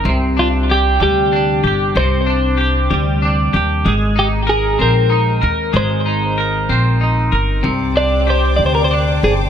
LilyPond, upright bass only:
\new Staff \with { instrumentName = "Upright bass" } { \clef bass \time 6/8 \key c \minor \tempo 4. = 63 c,4. d,4 g,,8 | c,4. d,4 ees,8 | aes,,4. bes,,4 ees,8 | aes,,4. bes,,4 g,,8 |
c,4. d,4 g,,8 | }